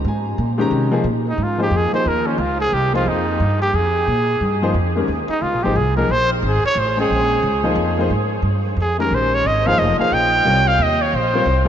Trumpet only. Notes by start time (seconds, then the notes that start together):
1.29 D#4
1.43 F4
1.63 G4
1.77 G#4
1.94 C5
2.08 A#4
2.27 C#4
2.39 F4
2.61 G#4
2.74 G4
2.95 F4
3.08 D#4
3.62 G4
3.75 G#4
5.30 D#4
5.42 F4
5.63 G4
5.77 G#4
5.97 A#4
6.12 C5
6.33 D#4
6.47 G#4
6.66 C#5
6.79 C5
7.01 G#4
8.82 G#4
9.00 A#4
9.15 C5
9.35 C#5
9.47 D#5
9.67 F5
9.79 D#5
9.99 F5
10.13 G5
10.68 F5
10.83 D#5
11.02 C#5
11.16 C5